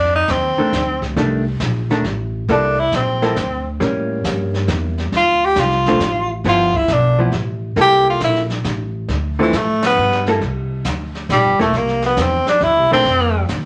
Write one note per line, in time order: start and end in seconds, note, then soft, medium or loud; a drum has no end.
0.00 0.27 F2 medium
0.00 0.14 D4 medium
0.16 0.33 D#4 medium
0.28 0.56 D#2 medium
0.28 1.04 C4 medium
0.28 kick soft
0.28 snare medium
0.28 hi-hat pedal soft
0.58 0.71 D#3 medium
0.58 0.71 A3 medium
0.58 0.72 D4 medium
0.58 muted upright bass stroke soft
0.72 1.15 D2 medium
0.72 kick soft
0.72 snare medium
0.72 hi-hat pedal medium
1.02 kick soft
1.02 snare soft
1.16 1.59 C2 medium
1.16 1.43 D#3 soft
1.16 1.44 A3 medium
1.16 1.44 D4 medium
1.16 brush sweep soft
1.16 kick soft
1.16 snare soft
1.60 2.03 A#1 medium
1.60 kick soft
1.60 snare medium
1.60 hi-hat pedal medium
1.90 2.03 D#3 medium
1.90 2.03 A3 medium
1.90 2.04 D4 medium
1.90 snare soft
2.04 2.47 A1 medium
2.04 kick soft
2.04 snare soft
2.48 2.91 C2 medium
2.48 2.76 A#3 medium
2.48 2.81 D4 medium
2.48 2.76 E4 medium
2.48 2.76 A4 medium
2.48 brush sweep soft
2.48 kick soft
2.48 snare soft
2.80 2.98 E4 loud
2.92 3.35 A#1 medium
2.92 kick soft
2.92 snare medium
2.92 hi-hat pedal medium
2.96 3.68 C4 medium
3.22 3.35 A#3 medium
3.22 3.35 E4 medium
3.22 3.36 A4 medium
3.22 snare soft
3.36 3.79 D2 medium
3.36 kick soft
3.36 snare medium
3.36 hi-hat pedal medium
3.80 4.23 A2 medium
3.80 5.04 G3 medium
3.80 5.04 A#3 medium
3.80 5.05 C#4 medium
3.80 brush sweep soft
3.80 kick soft
3.80 snare soft
4.24 4.67 G2 medium
4.24 kick soft
4.24 snare medium
4.24 hi-hat pedal medium
4.54 snare soft
4.68 5.11 E2 medium
4.68 kick soft
4.68 snare medium
4.68 hi-hat pedal medium
4.98 snare soft
5.12 5.55 D2 medium
5.12 brush sweep soft
5.12 kick soft
5.12 snare soft
5.17 5.47 F4 medium
5.45 5.62 G4 medium
5.56 5.99 C2 medium
5.56 kick soft
5.56 snare medium
5.56 hi-hat pedal medium
5.60 6.32 F4 medium
5.71 snare soft
5.86 6.00 D3 medium
5.86 6.00 A3 medium
5.86 6.00 C4 medium
5.86 6.01 F4 medium
5.86 snare soft
6.00 6.43 A1 medium
6.00 kick soft
6.00 snare medium
6.00 hi-hat pedal medium
6.44 6.87 G1 medium
6.44 6.72 F3 medium
6.44 6.72 B3 medium
6.44 6.73 E4 medium
6.44 brush sweep soft
6.44 kick soft
6.44 snare soft
6.49 6.78 F4 medium
6.74 6.94 E4 medium
6.74 kick medium
6.88 7.31 B1 medium
6.88 kick soft
6.88 snare medium
6.88 hi-hat pedal medium
6.93 7.21 D4 medium
7.19 7.32 F3 medium
7.19 7.32 B3 medium
7.19 7.32 E4 medium
7.32 7.75 A1 medium
7.32 kick soft
7.32 snare soft
7.76 8.19 C2 medium
7.76 8.45 A#3 medium
7.76 8.45 E4 medium
7.76 8.45 A4 medium
7.76 brush sweep soft
7.76 kick soft
7.76 snare soft
7.82 8.07 G4 medium
8.10 8.22 F4 medium
8.20 8.64 A#1 medium
8.20 kick soft
8.20 snare medium
8.20 hi-hat pedal medium
8.24 8.41 E4 medium
8.35 snare soft
8.50 snare soft
8.64 9.08 A1 medium
8.64 kick soft
8.64 snare medium
8.64 hi-hat pedal soft
9.08 9.52 D2 medium
9.08 brush sweep medium
9.08 kick soft
9.08 snare soft
9.39 9.52 D3 medium
9.39 9.59 E3 medium
9.39 9.52 A3 medium
9.39 9.53 C4 medium
9.39 9.53 F4 medium
9.53 9.96 A2 medium
9.53 kick soft
9.53 snare medium
9.53 hi-hat pedal medium
9.57 9.85 A3 medium
9.82 snare medium
9.82 ride medium
9.86 10.26 B3 medium
9.97 10.40 G2 medium
10.11 snare soft
10.26 10.40 A#3 medium
10.26 10.41 E4 medium
10.26 10.41 A4 medium
10.26 snare soft
10.41 10.84 C2 medium
10.41 brush sweep soft
10.41 kick soft
10.41 snare soft
10.85 11.28 D2 medium
10.85 kick soft
10.85 snare medium
10.85 hi-hat pedal medium
11.15 snare soft
11.29 11.44 A#1 medium
11.29 11.59 G3 medium
11.29 kick soft
11.29 snare medium
11.29 hi-hat pedal soft
11.44 11.59 G1 medium
11.59 11.72 E1 medium
11.59 11.78 A3 medium
11.59 11.72 A#3 medium
11.59 11.73 E4 medium
11.59 11.73 A4 medium
11.59 snare soft
11.73 12.16 C2 medium
11.73 brush sweep soft
11.73 kick soft
11.73 snare soft
11.77 12.05 A#3 medium
11.87 snare soft
12.02 snare soft
12.06 12.22 B3 medium
12.17 12.45 E2 medium
12.17 kick soft
12.17 snare medium
12.17 hi-hat pedal medium
12.21 12.48 C4 medium
12.47 12.65 D4 medium
12.47 muted upright bass stroke soft
12.47 snare medium
12.61 12.77 D2 medium
12.61 12.92 E4 medium
12.61 kick soft
12.61 snare soft
12.77 12.90 C2 soft
12.91 13.04 A#1 medium
12.91 13.04 D#3 medium
12.91 13.05 A3 medium
12.91 13.47 C4 medium
12.91 13.05 D4 medium
13.05 13.48 F2 medium
13.05 brush sweep soft
13.05 kick soft
13.05 snare soft
13.48 13.65 D#2 medium
13.48 kick soft
13.48 snare medium
13.48 hi-hat pedal medium